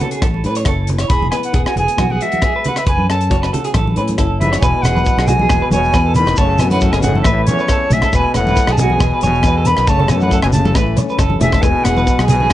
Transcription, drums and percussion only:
0.00 closed hi-hat, low conga
0.11 closed hi-hat
0.22 kick, cross-stick, closed hi-hat, high conga
0.34 high conga
0.44 closed hi-hat
0.55 closed hi-hat
0.65 kick, cross-stick, closed hi-hat
0.87 closed hi-hat, low conga
0.98 cross-stick, closed hi-hat
1.09 kick, closed hi-hat
1.22 high conga, low conga
1.32 cross-stick, closed hi-hat
1.43 closed hi-hat
1.54 kick, closed hi-hat
1.66 cross-stick
1.77 closed hi-hat, low conga
1.88 closed hi-hat
1.98 kick, cross-stick, closed hi-hat, high conga
2.10 high conga
2.21 closed hi-hat
2.32 closed hi-hat, high conga
2.42 kick, cross-stick, closed hi-hat
2.64 closed hi-hat, low conga
2.76 cross-stick, closed hi-hat
2.86 kick, closed hi-hat
2.99 high conga
3.10 cross-stick, closed hi-hat
3.21 closed hi-hat
3.31 kick, closed hi-hat
3.43 cross-stick
3.54 closed hi-hat, low conga
3.64 closed hi-hat
3.74 kick, cross-stick, closed hi-hat, high conga
3.87 high conga
3.96 closed hi-hat
4.08 closed hi-hat, high conga
4.18 kick, cross-stick, closed hi-hat
4.41 closed hi-hat, high conga, low conga
4.53 cross-stick, closed hi-hat
4.62 kick, shekere
4.84 cross-stick, closed hi-hat, shekere
4.97 high conga, shekere
5.05 kick, shekere
5.19 cross-stick
5.28 closed hi-hat, low conga, shekere
5.39 high conga
5.49 kick, cross-stick, shekere
5.71 closed hi-hat, high conga, shekere
5.84 shekere
5.93 kick, cross-stick, shekere
6.15 closed hi-hat, low conga, shekere
6.26 cross-stick, shekere
6.36 kick, shekere
6.58 cross-stick, closed hi-hat, shekere
6.70 high conga, shekere
6.80 kick, shekere
6.93 cross-stick
7.03 closed hi-hat, low conga, shekere
7.15 high conga
7.24 kick, cross-stick, shekere
7.47 closed hi-hat, high conga, shekere
7.58 shekere
7.68 kick, cross-stick, shekere
7.91 closed hi-hat, low conga, shekere
8.02 kick, cross-stick, shekere
8.13 kick, shekere
8.34 cross-stick, closed hi-hat, shekere
8.47 high conga, shekere
8.56 kick, shekere
8.67 cross-stick
8.78 closed hi-hat, low conga, shekere
8.90 high conga
9.00 kick, cross-stick, shekere
9.21 closed hi-hat, high conga, shekere
9.35 shekere
9.43 kick, cross-stick, shekere
9.65 closed hi-hat, shekere
9.77 cross-stick, shekere
9.87 kick, shekere
10.00 low conga
10.08 cross-stick, closed hi-hat, shekere
10.20 high conga, shekere
10.31 kick, shekere
10.42 cross-stick
10.53 closed hi-hat, low conga, shekere
10.65 high conga, shekere
10.75 kick, cross-stick, shekere
10.97 closed hi-hat, high conga, shekere
11.09 shekere
11.19 kick, cross-stick, shekere
11.30 high conga
11.41 closed hi-hat, low conga, shekere
11.52 kick, cross-stick, shekere
11.63 kick, shekere
11.85 cross-stick, closed hi-hat, shekere
11.97 high conga, shekere
12.07 kick, shekere
12.19 cross-stick
12.28 closed hi-hat, low conga, shekere
12.40 high conga

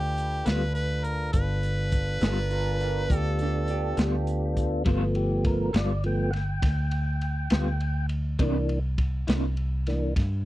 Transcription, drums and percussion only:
0.18 closed hi-hat
0.46 snare, closed hi-hat
0.75 closed hi-hat
1.04 closed hi-hat
1.33 kick, closed hi-hat
1.63 closed hi-hat
1.92 kick, closed hi-hat
2.21 snare, closed hi-hat
2.51 closed hi-hat
2.80 closed hi-hat
3.10 kick, closed hi-hat
3.39 closed hi-hat
3.68 closed hi-hat
3.97 snare, closed hi-hat
4.27 closed hi-hat
4.57 kick, closed hi-hat
4.85 kick, ride
5.15 ride
5.45 kick, ride
5.74 snare, ride
6.04 ride
6.33 snare, ride
6.62 kick, snare, ride
6.91 ride
7.21 ride
7.50 snare, ride
7.80 ride
8.09 ride
8.39 kick, ride
8.69 ride
8.98 kick, ride
9.28 snare, ride
9.57 ride
9.87 snare, ride
10.16 kick, snare, ride

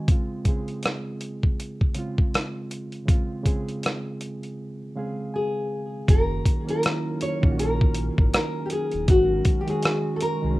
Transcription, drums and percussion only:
0.08 kick, closed hi-hat
0.45 kick, closed hi-hat
0.68 closed hi-hat
0.83 cross-stick, closed hi-hat
1.21 closed hi-hat
1.43 kick
1.60 closed hi-hat
1.81 kick
1.94 closed hi-hat
2.18 kick
2.34 cross-stick, closed hi-hat
2.71 closed hi-hat
2.92 closed hi-hat
3.08 kick, closed hi-hat
3.45 kick, closed hi-hat
3.68 closed hi-hat
3.83 cross-stick, closed hi-hat
4.21 closed hi-hat
4.43 closed hi-hat
6.08 kick, closed hi-hat
6.46 kick, closed hi-hat
6.69 closed hi-hat
6.83 cross-stick, closed hi-hat
7.21 closed hi-hat
7.43 kick
7.59 closed hi-hat
7.81 kick
7.94 closed hi-hat
8.18 kick
8.34 cross-stick, closed hi-hat
8.70 closed hi-hat
8.92 closed hi-hat
9.08 kick, closed hi-hat
9.45 kick, closed hi-hat
9.68 closed hi-hat
9.83 cross-stick, closed hi-hat
10.21 closed hi-hat

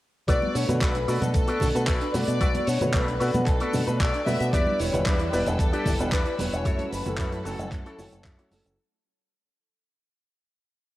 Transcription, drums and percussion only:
0.28 kick, closed hi-hat, muted conga, cabasa
0.42 high conga
0.55 open hi-hat, cabasa
0.69 closed hi-hat, low conga, cabasa
0.81 kick, clap, closed hi-hat, high conga, cabasa
0.95 closed hi-hat
1.08 open hi-hat, cabasa
1.22 closed hi-hat, muted conga, high conga, cabasa
1.34 kick, closed hi-hat, cabasa
1.48 closed hi-hat
1.60 kick, open hi-hat, muted conga, high conga, low conga, cabasa
1.76 closed hi-hat, cabasa
1.87 kick, clap, closed hi-hat, cabasa
2.01 closed hi-hat
2.14 open hi-hat, muted conga, high conga, cabasa
2.28 closed hi-hat, cabasa
2.41 kick, closed hi-hat, muted conga, cabasa
2.55 closed hi-hat, high conga
2.67 open hi-hat, cabasa
2.81 closed hi-hat, low conga, cabasa
2.94 kick, clap, closed hi-hat, high conga, cabasa
3.08 closed hi-hat
3.20 open hi-hat, cabasa
3.34 closed hi-hat, muted conga, high conga, cabasa
3.46 kick, clap, closed hi-hat, cabasa
3.60 closed hi-hat
3.73 open hi-hat, muted conga, high conga, low conga, cabasa
3.87 closed hi-hat, cabasa
4.00 kick, clap, closed hi-hat, cabasa
4.14 closed hi-hat
4.26 open hi-hat, high conga, cabasa
4.40 closed hi-hat, cabasa
4.53 kick, closed hi-hat, muted conga, cabasa
4.67 high conga
4.79 open hi-hat, cabasa
4.94 closed hi-hat, low conga, cabasa
5.06 kick, clap, closed hi-hat, high conga, cabasa
5.19 closed hi-hat
5.33 open hi-hat, cabasa
5.46 closed hi-hat, muted conga, high conga, cabasa
5.59 kick, closed hi-hat, cabasa
5.73 closed hi-hat
5.86 kick, open hi-hat, muted conga, high conga, low conga, cabasa
5.99 closed hi-hat, cabasa
6.12 kick, clap, closed hi-hat, cabasa
6.26 closed hi-hat
6.39 open hi-hat, muted conga, high conga, cabasa
6.53 closed hi-hat, cabasa
6.65 kick, closed hi-hat, muted conga, cabasa
6.79 closed hi-hat, high conga
6.93 open hi-hat, cabasa
7.06 closed hi-hat, low conga, cabasa
7.18 kick, clap, closed hi-hat, high conga, cabasa
7.32 closed hi-hat
7.45 open hi-hat, cabasa
7.59 closed hi-hat, muted conga, high conga, cabasa
7.71 kick, clap, closed hi-hat, cabasa
7.86 closed hi-hat
7.98 open hi-hat, muted conga, high conga, low conga, cabasa
8.12 closed hi-hat, cabasa
8.24 kick, clap, closed hi-hat, cabasa
8.39 closed hi-hat, muted conga
8.51 open hi-hat, high conga, cabasa
8.65 closed hi-hat, cabasa

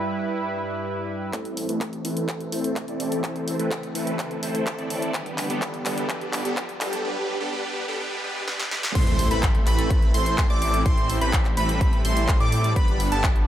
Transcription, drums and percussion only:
1.33 kick, clap, closed hi-hat
1.45 closed hi-hat
1.57 open hi-hat
1.69 closed hi-hat
1.81 kick, clap, closed hi-hat
1.93 closed hi-hat
2.05 open hi-hat
2.17 closed hi-hat
2.29 kick, clap, closed hi-hat
2.40 closed hi-hat
2.52 open hi-hat
2.64 closed hi-hat
2.76 kick, clap, closed hi-hat
2.88 closed hi-hat
3.00 open hi-hat
3.12 closed hi-hat
3.24 kick, clap, closed hi-hat
3.36 closed hi-hat
3.48 open hi-hat
3.60 closed hi-hat
3.71 kick, clap, closed hi-hat
3.83 closed hi-hat
3.95 open hi-hat
4.07 closed hi-hat
4.19 kick, clap, closed hi-hat
4.31 closed hi-hat
4.43 open hi-hat
4.55 closed hi-hat
4.67 kick, clap, closed hi-hat
4.79 closed hi-hat
4.90 open hi-hat
5.02 closed hi-hat
5.14 kick, clap, closed hi-hat
5.26 closed hi-hat
5.38 clap, open hi-hat
5.50 closed hi-hat
5.62 kick, clap, closed hi-hat
5.74 closed hi-hat
5.86 clap, open hi-hat
5.98 closed hi-hat
6.10 kick, clap, closed hi-hat
6.21 closed hi-hat
6.33 clap, open hi-hat
6.45 closed hi-hat
6.57 kick, clap, closed hi-hat
6.69 closed hi-hat
6.81 clap, open hi-hat
6.93 closed hi-hat
8.48 snare
8.60 snare
8.71 snare
8.83 snare
8.95 kick, closed hi-hat, crash
9.07 closed hi-hat
9.19 open hi-hat
9.31 closed hi-hat
9.43 kick, clap, closed hi-hat
9.55 closed hi-hat
9.67 clap, open hi-hat
9.79 closed hi-hat
9.90 kick, closed hi-hat
10.02 closed hi-hat
10.14 open hi-hat
10.26 closed hi-hat
10.38 kick, clap, closed hi-hat
10.50 closed hi-hat
10.62 open hi-hat
10.74 closed hi-hat
10.86 kick, closed hi-hat
10.98 closed hi-hat
11.10 open hi-hat
11.21 closed hi-hat
11.33 kick, clap, closed hi-hat
11.45 clap, closed hi-hat
11.57 open hi-hat
11.69 closed hi-hat
11.81 kick, closed hi-hat
11.93 closed hi-hat
12.05 open hi-hat
12.17 closed hi-hat
12.28 kick, clap, closed hi-hat
12.40 closed hi-hat
12.52 open hi-hat
12.64 closed hi-hat
12.76 kick, closed hi-hat
12.88 closed hi-hat
13.00 open hi-hat
13.12 closed hi-hat
13.24 kick, clap, closed hi-hat
13.36 closed hi-hat

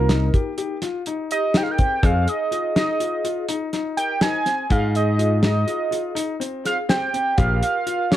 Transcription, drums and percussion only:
0.09 snare, closed hi-hat
0.34 kick, closed hi-hat
0.58 closed hi-hat
0.82 snare, closed hi-hat
1.06 closed hi-hat
1.31 closed hi-hat
1.54 snare, closed hi-hat
1.78 kick, closed hi-hat
2.03 kick, closed hi-hat
2.28 closed hi-hat
2.52 closed hi-hat
2.76 snare, closed hi-hat
3.00 closed hi-hat
3.25 closed hi-hat
3.49 closed hi-hat
3.73 snare, closed hi-hat
3.97 closed hi-hat
4.21 snare, closed hi-hat
4.46 snare, closed hi-hat
4.70 kick, closed hi-hat
4.95 closed hi-hat
5.19 closed hi-hat
5.43 snare, closed hi-hat
5.68 closed hi-hat
5.92 closed hi-hat
6.16 closed hi-hat
6.41 closed hi-hat
6.65 snare, closed hi-hat
6.89 snare, closed hi-hat
7.14 closed hi-hat
7.38 kick, closed hi-hat
7.63 closed hi-hat
7.87 closed hi-hat
8.12 snare, closed hi-hat

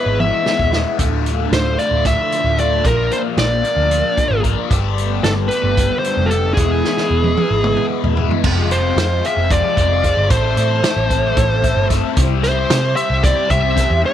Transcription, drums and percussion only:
0.20 high tom
0.46 snare
0.59 kick
0.73 snare
0.99 kick, closed hi-hat
1.26 closed hi-hat
1.53 snare, closed hi-hat
1.79 closed hi-hat
2.05 kick, snare, closed hi-hat
2.32 closed hi-hat
2.58 closed hi-hat
2.85 kick, closed hi-hat
3.11 closed hi-hat
3.38 snare, closed hi-hat
3.64 closed hi-hat
3.91 closed hi-hat
4.17 kick, closed hi-hat
4.44 kick, closed hi-hat
4.71 kick, closed hi-hat
4.98 closed hi-hat
5.24 snare, closed hi-hat
5.51 closed hi-hat
5.77 kick, closed hi-hat
6.04 closed hi-hat
6.31 closed hi-hat
6.57 kick, closed hi-hat
6.84 snare
6.97 snare
7.24 high tom
7.37 high tom
7.64 mid tom
7.77 mid tom
8.04 floor tom
8.17 floor tom
8.31 floor tom
8.44 kick, crash
8.71 closed hi-hat
8.98 snare, closed hi-hat
9.25 closed hi-hat
9.51 kick, closed hi-hat
9.77 kick, closed hi-hat
10.04 kick, closed hi-hat
10.30 kick, closed hi-hat
10.57 closed hi-hat
10.84 snare, closed hi-hat
11.10 kick, closed hi-hat
11.37 kick, closed hi-hat
11.64 kick, closed hi-hat
11.90 kick, snare, closed hi-hat
12.17 kick, closed hi-hat
12.44 snare, closed hi-hat
12.70 snare, closed hi-hat
12.97 closed hi-hat
13.24 kick, closed hi-hat
13.50 kick, closed hi-hat
13.77 kick, snare, closed hi-hat

